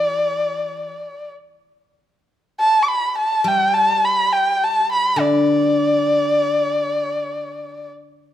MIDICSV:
0, 0, Header, 1, 3, 480
1, 0, Start_track
1, 0, Tempo, 859599
1, 976, Time_signature, 4, 2, 24, 8
1, 3382, Tempo, 909091
1, 4342, Tempo, 977199
1, 4570, End_track
2, 0, Start_track
2, 0, Title_t, "Erhu"
2, 0, Program_c, 0, 110
2, 0, Note_on_c, 0, 74, 68
2, 729, Note_off_c, 0, 74, 0
2, 1451, Note_on_c, 0, 81, 89
2, 1575, Note_on_c, 0, 86, 55
2, 1584, Note_off_c, 0, 81, 0
2, 1608, Note_on_c, 0, 83, 81
2, 1616, Note_off_c, 0, 86, 0
2, 1770, Note_off_c, 0, 83, 0
2, 1775, Note_on_c, 0, 81, 82
2, 1939, Note_on_c, 0, 79, 85
2, 1948, Note_off_c, 0, 81, 0
2, 2084, Note_on_c, 0, 81, 90
2, 2092, Note_off_c, 0, 79, 0
2, 2257, Note_on_c, 0, 83, 84
2, 2265, Note_off_c, 0, 81, 0
2, 2415, Note_on_c, 0, 79, 86
2, 2424, Note_off_c, 0, 83, 0
2, 2587, Note_on_c, 0, 81, 86
2, 2595, Note_off_c, 0, 79, 0
2, 2741, Note_off_c, 0, 81, 0
2, 2748, Note_on_c, 0, 83, 84
2, 2904, Note_on_c, 0, 74, 77
2, 2912, Note_off_c, 0, 83, 0
2, 4345, Note_off_c, 0, 74, 0
2, 4570, End_track
3, 0, Start_track
3, 0, Title_t, "Guzheng"
3, 0, Program_c, 1, 107
3, 0, Note_on_c, 1, 52, 56
3, 494, Note_off_c, 1, 52, 0
3, 1922, Note_on_c, 1, 55, 55
3, 2882, Note_on_c, 1, 50, 55
3, 3376, Note_off_c, 1, 55, 0
3, 4335, Note_off_c, 1, 50, 0
3, 4570, End_track
0, 0, End_of_file